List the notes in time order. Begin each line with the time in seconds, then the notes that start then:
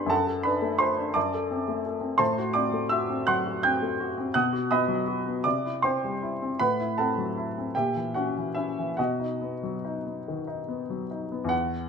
Already playing: D3 B3 D4 G4 A4 B4 C5 G5 A5 B5 C6
0.06 F#2 A5
0.10 A4 F#5
0.27 A4
0.43 D4 B4 B5
0.62 A3
0.79 A4 C5 C6
0.98 D4
1.14 F#2 D5 A5 D6
1.34 A4
1.51 C4
1.68 A3
1.86 A4
2.01 C4
2.18 A2 C5 A5 C6
2.38 F#4
2.54 C4 D5 D6
2.73 A3
2.89 F#4 E5 E6
3.10 C4
3.27 F#3 F#5 C6 F#6
3.46 F#4
3.63 C4 G5 G6
3.82 A3
4.00 F#4
4.18 C4
4.34 B2 F#5 D#6 F#6
4.53 F#4
4.71 B3 D#5 B5 D#6
4.88 F#3
5.07 F#4
5.26 B3
5.44 C3 D5 D6
5.65 E4
5.82 C4 C5 G5 C6
6.04 G3
6.22 E4
6.42 C4
6.60 A2 B4 F#5 B5
6.80 E4
6.98 C4 A4 F#5 A5
7.18 F#3
7.37 E4
7.58 C4
7.75 A#2 G4 E5 G5
7.96 E3
8.14 C#4 F#4 F#5
8.37 E3
8.55 C#4 E4 E5
8.79 E3
8.97 B2 F#4 D#5 F#5
9.20 D#4
9.41 B3
9.63 F#3
9.85 D#4
10.06 B3
10.28 D#3
10.47 D#4
10.68 B3
10.90 F#3
11.11 D#4
11.32 B3
11.44 E2
11.49 F#5